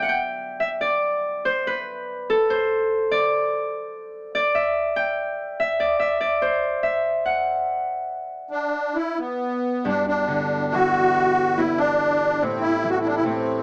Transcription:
Already playing: B3 D5 E5
0.02 F#5
0.09 G5
0.60 E5
0.81 D5
1.45 C5
1.67 B4
2.30 A4
2.50 C5
3.11 D5
4.35 D5
4.55 E5
4.96 G5
5.60 E5
5.80 D5
6.00 E5
6.21 D5
6.42 C5
6.83 E5
7.25 F#5
8.51 D4
8.95 E4
9.18 B3
9.83 G2 B2 G3 D4 E4
10.07 D4
10.27 D3
10.73 E3 F#4
11.57 B3 E4
11.78 D4
12.40 A2 C3 A3 C4 G4
12.61 E4
12.84 E3
12.90 F#4
12.99 E4
13.06 D4
13.15 E4
13.23 A2 C4

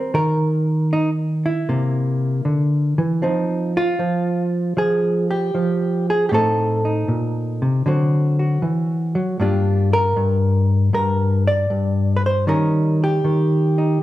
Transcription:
Already playing: D#3 G3 C4 A#4
0.14 D#3 A#4
0.93 D#4
1.46 E4
1.69 C3 A#3
2.45 D3
2.98 E3
3.22 F3 C4 D#4
3.77 F4
3.99 F3
4.77 F3 G#4
5.31 G4
5.55 F3
6.10 G#4
6.29 A2 A3 C4 G4
6.34 D#4 A4
6.85 D#4
7.08 A#2
7.62 C3
7.86 D3 F#3 C4 F#4
8.39 F#4
8.62 E3
9.15 F#3
9.40 G2 A#3 D4 F4 G4
9.93 A#4
10.16 G2
10.93 G2 A#4
11.47 D5
11.70 G2
12.16 B4
12.26 C5
12.47 D#3 G3 C#4 D#4 A#4
13.04 G4
13.24 D#3
13.78 D#4

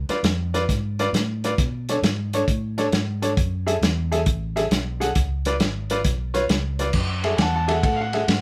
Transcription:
0.09 F4 B4 D5, snare, closed hi-hat
0.23 F2, snare, closed hi-hat
0.54 F4 B4 D5, snare, closed hi-hat
0.69 G#2, kick, snare, closed hi-hat
0.99 F4 B4 D5, snare, closed hi-hat
1.13 A2, snare, closed hi-hat
1.44 F4 B4 D5, snare, closed hi-hat
1.58 B2, kick, snare, closed hi-hat
1.89 D4 A4 C#5, snare, closed hi-hat
2.02 G#2, snare, closed hi-hat
2.33 D4 A4 C#5, snare, closed hi-hat
2.48 A2, kick, closed hi-hat
2.78 D4 A4 C#5, snare, closed hi-hat
2.92 G#2, snare, closed hi-hat
3.22 D4 A4 C#5, snare, closed hi-hat
3.37 F#2, kick, closed hi-hat
3.66 G#4 A4 E5, snare, closed hi-hat
3.82 E2, snare, closed hi-hat
4.12 G#4 A4 E5, snare, closed hi-hat
4.26 A1, kick, closed hi-hat
4.56 G#4 A4 E5, snare, closed hi-hat
4.71 B1, snare, closed hi-hat
5.00 G#4 A4 F#5, snare, closed hi-hat
5.15 C#2, kick, snare, closed hi-hat
5.45 F4 B4 D5, snare, closed hi-hat
5.60 G#1, snare, closed hi-hat
5.90 F4 B4 D5, snare, closed hi-hat
6.05 B1, kick, snare, closed hi-hat
6.34 F4 B4 C#5, snare, closed hi-hat
6.49 C#2, snare, closed hi-hat
6.79 F4 B4 D5, snare, closed hi-hat
6.93 F#2, kick, snare, crash
7.24 G#4 A4 E5, snare, ride
7.37 E2 G#5, snare, ride
7.41 F#5 A5
7.56 F#5 A5
7.68 G#4 A4 E5 F#5, snare, ride
7.83 A2 A4 F#5, kick, ride
7.96 F5
8.01 F#5
8.13 G#4 A4 E5, snare, ride
8.28 G#2, snare, ride

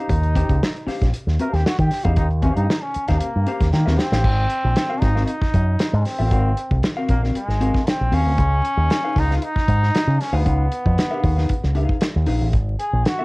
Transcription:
Already playing: D#4 C5 F5
0.00 C#4 G4
0.09 D#2, kick, closed hi-hat
0.23 closed hi-hat
0.35 C#4 G4 C5 G5, kick, closed hi-hat
0.49 C#2, kick, closed hi-hat
0.63 snare
0.76 closed hi-hat
0.87 C#4 G4 C5 F5, muted fingered electric bass stroke, snare, open hi-hat
1.02 A#1, kick, snare, closed hi-hat
1.14 closed hi-hat
1.27 D#2, snare
1.39 C#4 G4 A#4 C5 F5, closed hi-hat
1.53 D#2 G4, snare, closed hi-hat
1.66 F#4, snare
1.79 D#3 G4, kick, closed hi-hat
1.91 snare, open hi-hat
2.04 E2 C#4 D#4 G4 C5 F5, kick, closed hi-hat
2.16 D#2 D#4, kick, closed hi-hat
2.31 closed hi-hat
2.42 C#4 G4 C5 F5, kick, closed hi-hat
2.56 G2 D#4, closed hi-hat
2.70 snare
2.82 C#4
2.94 muted fingered electric bass stroke, closed hi-hat
3.08 D#2 C#4 D#4 G4 C5 F5, kick, snare, closed hi-hat
3.19 A#3, closed hi-hat
3.36 G2
3.47 C#4 G4 C5 F5, closed hi-hat
3.61 D#2, kick, snare, closed hi-hat
3.72 D#3 A#3, snare
3.86 D#2 C#4 G4 C5 F5, snare
3.98 C4, snare
4.12 A1 C#4 G4 C5 F5, snare
4.24 G#1, kick, crash
4.50 closed hi-hat
4.64 A#1
4.76 snare, closed hi-hat
4.90 C4 F#4 A#4 F5
5.00 G#1 D#4, kick, snare, closed hi-hat
5.15 C4 F#4 A#4 F5, snare
5.26 D#4, closed hi-hat
5.42 kick, snare
5.54 F#2, kick, closed hi-hat
5.79 snare, closed hi-hat
5.93 G#2
6.04 C4, snare, open hi-hat
6.19 A1 C4 F#4 A#4 F5
6.31 G#1 C4 F#4 A#4 F5, kick, closed hi-hat
6.57 closed hi-hat
6.71 C2, kick
6.83 snare, closed hi-hat
6.97 C4 F#4 A#4 F5
7.09 A#1 A#3, kick, closed hi-hat
7.22 C4 F#4 A#4 F5, snare
7.35 G#3, closed hi-hat
7.48 G#1, snare
7.60 C4 F#4 A#4 F5, closed hi-hat
7.74 kick, snare
7.87 C4, snare, closed hi-hat
8.01 A#1
8.12 D#2 C4 C#4 F#4 A#4 F5, open hi-hat
8.26 D2
8.38 C#2, kick, closed hi-hat
8.65 closed hi-hat
8.77 D#2
8.90 snare, closed hi-hat
9.04 D#4 G#4 B4 F5
9.16 C#2 D#4, kick, snare, open hi-hat
9.30 D#4 G#4 B4 F5, snare
9.37 F4
9.42 D#4, closed hi-hat
9.56 kick, snare
9.68 G#2, kick, closed hi-hat
9.83 snare
9.95 snare, closed hi-hat
10.07 C#3
10.21 C#4, snare, open hi-hat
10.32 D2 B3 D#4 G#4 B4 F5
10.45 C#2 D#4 G#4 B4 F5, kick, closed hi-hat
10.72 closed hi-hat
10.86 F2, kick
10.98 snare, closed hi-hat
11.11 D#4 G#4 B4 F5
11.24 D#2, kick, open hi-hat
11.37 D#4 G#4 B4 F5, snare
11.49 muted fingered electric bass stroke, kick, closed hi-hat
11.63 C#2, snare
11.75 D#4 G#4 B4 F5, closed hi-hat
11.89 kick
12.01 snare, closed hi-hat
12.16 D#2
12.26 A#1 D#4 G#4 B4 F5, open hi-hat
12.41 A1
12.53 G#1, kick, closed hi-hat
12.79 G#4, closed hi-hat
12.93 A#1
13.05 F#4, snare, closed hi-hat
13.19 C4 F#4 A#4 F5

